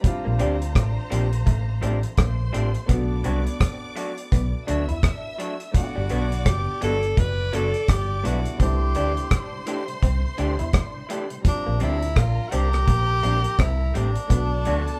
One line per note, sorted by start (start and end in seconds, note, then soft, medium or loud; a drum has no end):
0.01 2.84 G3 medium
0.01 2.85 C4 medium
0.01 2.14 C5 medium
0.01 2.14 A#5 loud
0.01 kick loud
0.01 closed hi-hat medium
0.05 2.86 D4 medium
0.05 2.87 F4 medium
0.25 0.40 A#1 loud
0.25 0.34 A#3 medium
0.39 0.74 D2 medium
0.39 0.54 F3 medium
0.39 0.55 C4 medium
0.39 0.61 D4 medium
0.39 0.55 D4 medium
0.39 0.55 G4 loud
0.39 closed hi-hat medium
0.62 closed hi-hat medium
0.75 0.96 A1 loud
0.75 0.89 A3 medium
0.75 kick loud
0.75 cross-stick loud
0.75 closed hi-hat loud
1.10 1.45 A#1 loud
1.10 1.26 F3 medium
1.10 1.32 A#3 medium
1.10 1.26 C4 medium
1.10 1.26 D4 medium
1.10 1.26 G4 medium
1.10 closed hi-hat loud
1.33 closed hi-hat medium
1.46 1.81 A1 loud
1.46 1.68 A3 medium
1.46 kick loud
1.46 closed hi-hat medium
1.82 2.03 A1 loud
1.82 1.97 F3 medium
1.82 1.95 A3 medium
1.82 1.97 C4 medium
1.82 1.98 D4 loud
1.82 1.98 G4 medium
1.82 closed hi-hat medium
2.03 closed hi-hat medium
2.17 2.52 A#1 loud
2.17 2.39 A#3 medium
2.17 2.88 C5 medium
2.17 2.87 C6 medium
2.17 kick loud
2.17 cross-stick loud
2.17 closed hi-hat loud
2.53 2.74 A1 medium
2.53 2.68 F3 medium
2.53 2.67 A3 medium
2.53 2.68 C4 medium
2.53 2.69 D4 medium
2.53 2.69 G4 medium
2.53 closed hi-hat medium
2.74 closed hi-hat medium
2.86 3.23 B1 loud
2.86 5.69 A3 medium
2.86 5.70 B3 medium
2.86 3.10 B3 medium
2.86 5.71 D4 medium
2.86 4.64 D5 medium
2.86 4.64 D6 loud
2.86 kick loud
2.86 closed hi-hat loud
2.92 5.72 F#4 loud
3.24 3.46 C2 medium
3.24 3.39 F#3 medium
3.24 3.40 A3 medium
3.24 3.38 C4 medium
3.24 3.40 D4 medium
3.24 3.40 F#4 loud
3.24 closed hi-hat medium
3.47 closed hi-hat medium
3.61 kick loud
3.61 cross-stick loud
3.61 closed hi-hat loud
3.96 4.11 F#3 medium
3.96 4.11 A3 medium
3.96 4.11 D4 loud
3.96 4.12 F#4 loud
3.96 closed hi-hat medium
4.18 closed hi-hat medium
4.32 4.53 B1 loud
4.32 4.45 B3 medium
4.32 kick loud
4.32 closed hi-hat medium
4.67 4.89 D2 medium
4.67 4.82 F#3 medium
4.67 4.83 A3 medium
4.67 4.80 D4 medium
4.67 4.83 D4 medium
4.67 4.83 F#4 medium
4.67 5.72 E5 medium
4.67 5.72 E6 medium
4.67 closed hi-hat medium
4.89 5.03 E2 medium
4.89 4.97 E4 medium
4.89 closed hi-hat soft
5.03 kick loud
5.03 cross-stick loud
5.03 closed hi-hat medium
5.38 5.54 F#3 medium
5.38 5.54 A3 medium
5.38 5.54 D4 medium
5.38 5.54 F#4 medium
5.38 closed hi-hat medium
5.60 closed hi-hat medium
5.72 8.18 A3 medium
5.72 8.19 B3 medium
5.72 7.14 D5 medium
5.72 7.14 D6 loud
5.72 kick loud
5.72 closed hi-hat loud
5.76 8.20 D4 medium
5.76 5.84 F4 medium
5.76 6.49 F#4 loud
5.84 8.25 F#5 medium
5.96 6.10 G1 medium
5.96 6.03 G2 medium
5.96 6.03 D3 medium
5.96 6.04 G3 medium
6.09 6.44 B1 medium
6.09 6.25 F#3 medium
6.09 6.21 G3 medium
6.09 6.21 B3 medium
6.09 6.32 B3 medium
6.09 6.25 B3 loud
6.09 6.26 D4 loud
6.09 6.22 F#4 medium
6.09 6.26 F#4 medium
6.09 closed hi-hat medium
6.31 6.39 G2 medium
6.31 6.39 D3 medium
6.31 closed hi-hat medium
6.46 6.66 F#1 loud
6.46 6.59 F#3 medium
6.46 6.82 G4 loud
6.46 kick loud
6.46 cross-stick loud
6.46 closed hi-hat loud
6.67 6.75 G2 medium
6.67 6.75 D3 medium
6.81 7.16 G1 loud
6.81 6.96 F#3 medium
6.81 6.92 G3 medium
6.81 7.03 G3 medium
6.81 6.93 B3 medium
6.81 6.97 B3 loud
6.81 6.97 D4 loud
6.81 6.93 F#4 medium
6.81 6.97 F#4 loud
6.81 7.20 A4 loud
6.81 closed hi-hat loud
7.03 7.11 G2 medium
7.03 7.11 D3 medium
7.03 closed hi-hat medium
7.17 7.51 F#1 medium
7.17 7.39 F#3 medium
7.17 7.56 B4 loud
7.17 8.57 D5 loud
7.17 8.57 D6 medium
7.17 kick loud
7.17 closed hi-hat medium
7.38 7.46 G2 medium
7.38 7.46 D3 medium
7.52 7.74 F#1 loud
7.52 7.68 F#3 loud
7.52 7.66 F#3 medium
7.52 7.64 G3 medium
7.52 7.64 B3 medium
7.52 7.68 B3 medium
7.52 7.68 D4 loud
7.52 7.64 F#4 medium
7.52 7.68 F#4 loud
7.52 7.92 A4 loud
7.52 closed hi-hat medium
7.74 7.82 G2 medium
7.74 7.82 D3 medium
7.74 closed hi-hat medium
7.88 8.22 G1 medium
7.88 8.10 G3 medium
7.88 8.28 G4 medium
7.88 kick loud
7.88 cross-stick loud
7.88 closed hi-hat loud
8.10 8.17 G2 medium
8.10 8.17 D3 medium
8.23 8.45 B1 medium
8.23 8.39 F#3 medium
8.23 8.35 G3 medium
8.23 8.57 A3 medium
8.23 8.59 B3 medium
8.23 8.35 B3 medium
8.23 8.39 B3 medium
8.23 8.37 B3 medium
8.23 8.59 D4 medium
8.23 8.39 D4 medium
8.23 8.60 E4 medium
8.23 8.35 F#4 medium
8.23 8.40 F#4 medium
8.23 8.61 F#4 loud
8.23 closed hi-hat medium
8.45 8.53 G2 medium
8.45 8.53 D3 medium
8.45 closed hi-hat medium
8.57 8.94 C2 loud
8.57 11.39 G3 medium
8.57 11.40 A3 medium
8.57 8.82 C4 medium
8.57 11.41 D4 medium
8.57 11.41 C5 medium
8.57 11.41 C6 loud
8.57 kick loud
8.57 closed hi-hat loud
8.62 11.42 E4 medium
8.62 9.64 G4 loud
8.80 8.88 C3 medium
8.80 8.88 G3 medium
8.95 9.16 D2 medium
8.95 9.10 E3 medium
8.95 9.06 A3 medium
8.95 9.11 A3 medium
8.95 9.06 D4 medium
8.95 9.09 D4 medium
8.95 9.11 D4 medium
8.95 9.06 E4 medium
8.95 9.11 G4 medium
8.95 closed hi-hat medium
9.16 9.24 C3 medium
9.16 9.24 G3 medium
9.16 closed hi-hat medium
9.31 kick loud
9.31 cross-stick loud
9.31 closed hi-hat loud
9.52 9.59 C3 medium
9.52 9.59 G3 medium
9.65 9.82 E3 medium
9.65 9.77 A3 medium
9.65 9.82 A3 medium
9.65 9.77 D4 medium
9.65 9.82 D4 medium
9.65 9.78 E4 medium
9.65 9.82 G4 loud
9.65 closed hi-hat medium
9.87 9.95 C3 medium
9.87 9.95 G3 medium
9.87 closed hi-hat medium
10.03 10.23 C2 loud
10.03 10.15 C4 medium
10.03 kick loud
10.03 closed hi-hat medium
10.23 10.31 C3 medium
10.23 10.31 G3 medium
10.38 10.59 D2 medium
10.38 10.53 E3 medium
10.38 10.49 A3 medium
10.38 10.53 A3 medium
10.38 10.49 D4 medium
10.38 10.51 D4 medium
10.38 10.53 D4 medium
10.38 10.49 E4 loud
10.38 10.54 G4 medium
10.38 closed hi-hat medium
10.59 10.74 E2 medium
10.59 10.67 C3 medium
10.59 10.67 G3 medium
10.59 10.68 E4 medium
10.59 closed hi-hat soft
10.73 kick loud
10.73 cross-stick loud
10.73 closed hi-hat medium
10.94 11.02 C3 medium
10.94 11.02 G3 medium
11.09 11.24 E3 medium
11.09 11.20 A3 medium
11.09 11.24 A3 medium
11.09 11.21 D4 medium
11.09 11.25 D4 medium
11.09 11.21 E4 loud
11.09 11.25 G4 medium
11.09 closed hi-hat medium
11.30 11.38 C3 medium
11.30 11.38 G3 medium
11.30 closed hi-hat medium
11.42 14.25 G3 medium
11.42 14.26 C4 medium
11.42 14.26 A#4 medium
11.42 14.26 A#5 loud
11.42 kick loud
11.42 closed hi-hat loud
11.46 14.28 F3 medium
11.46 14.27 D4 medium
11.46 11.84 D4 loud
11.66 11.80 A#1 loud
11.66 11.74 A#2 medium
11.66 11.74 F3 medium
11.66 11.75 A#3 medium
11.80 12.15 D2 medium
11.80 11.91 G3 medium
11.80 11.95 G3 medium
11.80 11.91 C4 medium
11.80 11.96 C4 medium
11.80 11.91 D4 medium
11.80 12.02 D4 medium
11.80 11.96 D4 loud
11.80 12.21 E4 loud
11.80 11.96 G4 medium
11.80 closed hi-hat medium
12.01 12.09 A#2 medium
12.01 12.09 F3 medium
12.01 closed hi-hat medium
12.16 12.37 A#1 loud
12.16 12.29 A#3 medium
12.16 12.50 F4 loud
12.16 kick loud
12.16 cross-stick loud
12.16 closed hi-hat loud
12.37 12.45 A#2 medium
12.37 12.45 F3 medium
12.48 12.63 G3 medium
12.48 12.67 G3 medium
12.48 12.63 C4 medium
12.48 12.67 C4 medium
12.48 12.63 D4 loud
12.48 12.55 F#4 medium
12.48 closed hi-hat medium
12.52 12.86 C2 loud
12.52 12.74 C4 medium
12.52 12.67 D4 medium
12.52 12.67 G4 loud
12.52 13.63 G4 loud
12.73 12.81 A#2 medium
12.73 12.81 F3 medium
12.73 cross-stick medium
12.73 closed hi-hat soft
12.88 13.22 A#1 loud
12.88 13.09 A#3 medium
12.88 kick loud
12.88 closed hi-hat medium
13.09 13.17 A#2 medium
13.09 13.16 F3 medium
13.23 13.44 A#1 loud
13.23 13.38 G3 medium
13.23 13.35 G3 medium
13.23 13.36 A#3 medium
13.23 13.38 C4 medium
13.23 13.35 C4 medium
13.23 13.35 D4 medium
13.23 13.39 D4 medium
13.23 13.39 G4 medium
13.23 closed hi-hat medium
13.44 13.52 A#2 medium
13.44 13.52 F3 medium
13.44 closed hi-hat medium
13.59 13.93 C2 loud
13.59 13.80 C4 medium
13.59 13.98 E4 loud
13.59 kick loud
13.59 cross-stick loud
13.59 closed hi-hat medium
13.81 13.88 A#2 medium
13.81 13.88 F3 medium
13.94 14.15 A1 medium
13.94 14.06 G3 medium
13.94 14.09 G3 medium
13.94 14.08 A3 medium
13.94 14.06 C4 medium
13.94 14.10 C4 medium
13.94 14.06 D4 medium
13.94 14.10 D4 medium
13.94 15.00 D4 loud
13.94 14.10 G4 medium
13.94 closed hi-hat medium
14.15 14.24 A#2 medium
14.15 14.24 F3 medium
14.15 closed hi-hat medium
14.27 14.64 B1 loud
14.27 15.00 A3 medium
14.27 15.00 B3 medium
14.27 14.52 B3 medium
14.27 15.00 A4 medium
14.27 15.00 A5 loud
14.27 kick loud
14.27 closed hi-hat loud
14.31 15.00 D4 medium
14.31 15.00 F#4 medium
14.52 14.59 B2 medium
14.52 14.59 F#3 medium
14.65 14.87 D2 medium
14.65 14.81 F#3 medium
14.65 14.77 A3 medium
14.65 14.81 A3 medium
14.65 14.77 B3 medium
14.65 14.79 D4 medium
14.65 14.78 D4 medium
14.65 14.81 D4 medium
14.65 14.82 F#4 loud
14.65 closed hi-hat medium
14.87 14.95 B2 medium
14.87 14.95 F#3 medium
14.87 closed hi-hat medium